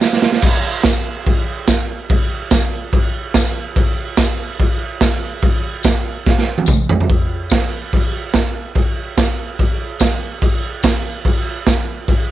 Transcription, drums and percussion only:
0.01 snare medium
0.01 tambourine medium
0.13 snare medium
0.22 snare loud
0.32 snare medium
0.42 kick loud
0.42 crash loud
0.42 crash medium
0.83 kick loud
0.83 snare loud
0.83 tambourine medium
0.83 crash medium
1.26 kick loud
1.26 crash medium
1.68 kick loud
1.68 snare loud
1.68 tambourine medium
1.68 crash medium
2.09 kick loud
2.09 crash medium
2.51 kick loud
2.51 snare loud
2.51 tambourine loud
2.51 crash medium
2.93 kick loud
2.93 crash medium
3.34 kick loud
3.34 snare loud
3.34 tambourine loud
3.34 crash medium
3.76 kick loud
3.76 crash medium
4.17 kick loud
4.17 snare loud
4.17 tambourine loud
4.17 crash medium
4.60 kick loud
4.60 crash medium
5.01 kick loud
5.01 snare loud
5.01 tambourine medium
5.01 crash medium
5.42 kick loud
5.42 crash medium
5.83 kick loud
5.83 snare loud
5.83 tambourine loud
5.83 crash medium
6.26 kick loud
6.26 snare medium
6.39 snare medium
6.58 high tom medium
6.66 kick loud
6.66 mid tom loud
6.66 tambourine medium
6.89 floor tom loud
7.00 floor tom medium
7.10 kick loud
7.10 crash medium
7.50 kick loud
7.50 snare loud
7.50 tambourine medium
7.50 crash medium
7.93 kick medium
7.93 crash medium
8.34 kick loud
8.34 snare loud
8.34 tambourine medium
8.34 crash medium
8.75 kick loud
8.75 crash medium
9.18 kick loud
9.18 snare loud
9.18 tambourine medium
9.18 crash medium
9.59 kick loud
9.59 crash medium
10.00 kick loud
10.00 snare loud
10.00 tambourine medium
10.00 crash medium
10.42 kick loud
10.42 crash medium
10.83 kick loud
10.83 snare loud
10.83 tambourine loud
10.83 crash medium
11.25 kick loud
11.25 crash medium
11.67 kick loud
11.67 snare loud
11.67 tambourine medium
11.67 crash medium
12.08 kick loud
12.08 crash medium

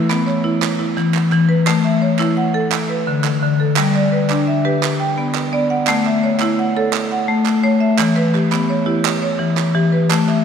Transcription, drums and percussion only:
0.11 clap soft
0.29 clap soft
0.62 clap medium
0.98 clap soft
1.14 clap soft
1.32 clap soft
1.67 clap medium
1.84 clap soft
2.19 clap soft
2.72 clap medium
3.24 clap soft
3.77 clap medium
3.95 clap soft
4.30 clap soft
4.83 clap medium
5.35 clap soft
5.87 clap medium
6.05 clap soft
6.40 clap soft
6.93 clap medium
7.46 clap soft
7.99 clap medium
8.16 clap soft
8.35 clap soft
8.52 clap soft
9.05 clap medium
9.57 clap soft
10.11 clap medium
10.29 clap soft

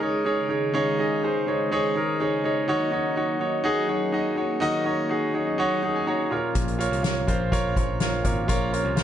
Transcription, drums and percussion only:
6.55 kick medium
6.55 closed hi-hat medium
6.68 closed hi-hat soft
6.80 closed hi-hat medium
6.93 closed hi-hat soft
7.04 snare medium
7.04 closed hi-hat medium
7.28 kick medium
7.28 closed hi-hat medium
7.52 kick medium
7.52 closed hi-hat medium
7.76 kick medium
7.76 closed hi-hat medium
8.00 snare medium
8.00 closed hi-hat medium
8.25 kick medium
8.25 closed hi-hat medium
8.49 kick medium
8.49 closed hi-hat medium
8.74 closed hi-hat medium
8.97 snare loud
8.97 closed hi-hat medium

